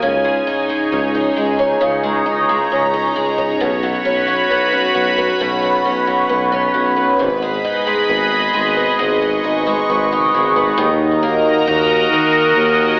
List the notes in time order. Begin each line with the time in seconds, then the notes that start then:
Already playing: F#3 A#3 D#4 G#5
0.02 C#2 C#3 D#4 G#4 C#5
0.24 G#3
0.47 D#4
0.69 G#3
0.92 C#2 C#4
1.15 D#4
1.36 C#2 G#3
1.59 C#4
1.81 C#2 C#3 A#5
2.03 G#3
2.26 C#2 D#4
2.49 G#3
2.71 C#2 C#4
2.94 D#4
3.16 C#2 G#3
3.38 C#4
3.60 B1 B2 F#4 B4 B5
3.83 F#3
4.05 B1 C#4
4.28 F#3
4.50 B1 B3
4.72 C#4
4.95 B1 F#3
5.18 B3
5.40 B1 B2
5.63 F#3
5.85 B1 C#4
6.07 F#3
6.29 B1 B3
6.52 C#4
6.74 B1 F#3
6.96 B3
7.19 G#1 G#2 G#4 D#5 B5
7.42 G#3
7.64 D#4
7.87 G#3
8.09 G#1 B3
8.31 D#4
8.54 G#1 G#3
8.76 B3
8.98 G#1 G#2 C#6
9.22 G#3
9.44 G#1 D#4
9.67 G#3
9.89 G#1 B3
10.12 D#4
10.34 G#1 G#3
10.56 B3
10.77 D#2 D#3 F#4 A#4 D#5 A#5
11.23 A#3
11.67 D#2 D#4
12.12 D#3 A#3
12.56 D#2 G#5